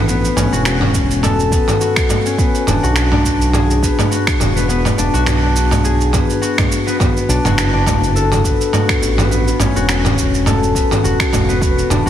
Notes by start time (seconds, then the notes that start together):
Already playing: A1 D4 F#4 A4
0.07 B3, cabasa
0.25 cabasa
0.36 A1 C#4, mid tom, cabasa
0.52 E1 F#4, cabasa
0.65 F#4, finger snap, cabasa
0.81 C#4, mid tom
0.94 kick, cabasa
1.11 cabasa
1.23 A4, mid tom, cabasa
1.40 cabasa
1.52 B3, kick, cabasa
1.68 mid tom, cabasa
1.81 F#4, cabasa
1.96 finger snap, kick, cabasa
2.09 mid tom, cabasa
2.26 C#4, cabasa
2.38 B3, kick, cabasa
2.55 cabasa
2.67 E1 D4, mid tom, cabasa
2.83 B1 F#4, cabasa
2.96 F#4, finger snap, cabasa
3.12 D4, mid tom
3.25 kick, cabasa
3.41 cabasa
3.53 G#4, mid tom, cabasa
3.70 cabasa
3.83 B3, kick, cabasa
3.99 mid tom, cabasa
4.11 F#4, cabasa
4.27 finger snap, kick, cabasa
4.40 E1, mid tom, cabasa
4.56 B3, cabasa
4.69 B3, cabasa
4.85 mid tom, cabasa
4.98 E1 D4, cabasa
5.14 B1 F#4, cabasa
5.26 F#4, finger snap, mid tom, cabasa
5.43 D4
5.56 cabasa
5.71 mid tom, cabasa
5.84 G#4, cabasa
6.01 cabasa
6.13 B3, kick, mid tom, cabasa
6.30 cabasa
6.41 F#4, cabasa
6.58 finger snap, kick, mid tom, cabasa
6.72 cabasa
6.87 B3, cabasa
7.00 B3, kick, mid tom, cabasa
7.17 cabasa
7.29 B1 D4, cabasa
7.45 F#1 F#4, mid tom, cabasa
7.58 F#4, finger snap, cabasa
7.73 D4
7.86 kick, mid tom, cabasa
8.03 cabasa
8.15 A4, cabasa
8.32 mid tom, cabasa
8.44 B3, kick, cabasa
8.61 cabasa
8.73 F#4, mid tom, cabasa
8.89 finger snap, kick, cabasa
9.02 A1, cabasa
9.17 B3, mid tom, cabasa
9.30 B3, cabasa
9.48 cabasa
9.59 A1 C#4, mid tom, cabasa
9.75 E1 F#4, cabasa
9.89 F#4, finger snap, cabasa
10.05 C#4, mid tom, cabasa
10.17 kick, cabasa
10.34 cabasa
10.46 A4, mid tom, cabasa
10.63 cabasa
10.75 B3, kick, cabasa
10.91 mid tom, cabasa
11.04 E1 F#4, cabasa
11.20 finger snap, kick, cabasa
11.33 E1, kick, mid tom, cabasa
11.49 B3, cabasa
11.62 B3, kick, cabasa
11.78 cabasa
11.90 E1 D4, mid tom, cabasa
12.06 B1 F#4